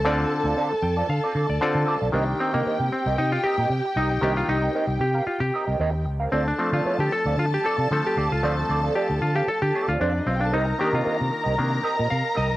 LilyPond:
<<
  \new Staff \with { instrumentName = "Violin section" } { \time 4/4 \key c \dorian \tempo 4 = 114 <a' a''>1 | <g' g''>1~ | <g' g''>2.~ <g' g''>8 r8 | <a' a''>1~ |
<a' a''>2. \tuplet 3/2 { <c' c''>16 <d' d''>16 <ees' ees''>16 <f' f''>16 <g' g''>16 <a' a''>16 } | <bes' bes''>1 | }
  \new Staff \with { instrumentName = "Clean electric guitar" } { \time 4/4 \key c \dorian <c' f' a' d''>16 r8 <c' f' a' d''>16 <c' f' a' d''>16 r8 <c' f' a' d''>16 r16 <c' f' a' d''>16 <c' f' a' d''>16 r8. <c' f' a' d''>16 <c' f' a' d''>16 | <c' g' bes' ees''>16 r16 <c' g' bes' ees''>16 <c' g' bes' ees''>16 <c' g' bes' ees''>16 r8 <c' g' bes' ees''>16 r8 <c' g' bes' ees''>16 <c' g' bes' ees''>16 r8 <c' g' bes' ees''>16 r16 | <c' g' bes' ees''>16 r16 <c' g' bes' ees''>16 <c' g' bes' ees''>16 <c' g' bes' ees''>16 r8 <c' g' bes' f''>16 r8 <c' g' bes' ees''>16 <c' g' bes' ees''>16 <c' g' bes' ees''>16 r8 <c' g' bes' f''>16 | <c' f' a' d''>16 r16 <c' f' a' d''>16 <c' f' a' d''>16 <c' f' a' d''>8 r16 <c' f' a' d''>16 r8 <c' f' a' d''>16 <c' f' a' d''>16 r8 <c' f' a' d''>16 r16 |
<c' f' a' d''>16 r16 <c' f' a' d''>16 <c' f' a' d''>16 <c' f' a' d''>16 r8 <c' f' a' f''>16 r8 <c' f' a' d''>16 <c' f' a' d''>16 <c' f' a' d''>16 r8 <c' f' a' f''>16 | <c' g' bes' ees''>16 r16 <c' g' bes' ees''>16 <c' g' bes' ees''>16 <c' g' bes' ees''>16 r8 <c' g' bes' ees''>16 r8 <c' g' bes' ees''>16 <c' g' bes' ees''>16 r8 <c' g' bes' ees''>16 r16 | }
  \new Staff \with { instrumentName = "Clav" } { \time 4/4 \key c \dorian r4. g''8 f''8. d''16 c''4 | r8 c'16 bes8. c'8 ees'16 f'16 g'4 ees'8 | g'16 f'16 ees'4 g'8 f'16 g'4 r8. | c'16 d'8 f'8 g'16 a'8 f'16 g'16 a'8 a'16 g'8 f'16~ |
f'16 r8. g'8 f'16 g'16 a'16 g'8 f'16 d'8 c'16 d'16 | ees'8 g'16 f'4 r4 r16 f''8 ees''8 | }
  \new Staff \with { instrumentName = "Clav" } { \time 4/4 \key c \dorian <d c' f' a' d''>4. r4. <d c' f' a' d''>8 r8 | <ees bes d'>4. r2 r8 | <ees bes d'>8 r2. r8 | r8 <f a c'>2~ <f a c'>8 <f a c'>8 r8 |
<f a c'>1 | r8 <ees bes d'>4. <ees bes d'>8 r4. | }
  \new Staff \with { instrumentName = "Fingered electric bass" } { \clef bass \time 4/4 \key c \dorian d,8 r16 d,16 r8 f,8 d16 r16 d16 d,16 r16 d16 r16 b,,16 | c,8 r16 c16 r16 c16 r16 c,16 c8 r16 bes,16 c16 r16 c,16 b,,16 | c,8 c,8 r16 c,16 c8 r16 c16 r16 c,16 ees,8 des,8 | d,8 r16 d16 r16 d16 r16 d,16 d8 r16 c16 d16 r16 d,16 des,16 |
d,8 d,8 r16 d,16 d8 r16 d16 r16 d,16 f,8 b,,8 | c,8 r16 c16 r16 c16 r16 c,16 c8 r16 bes,16 c16 r16 c,16 b,,16 | }
>>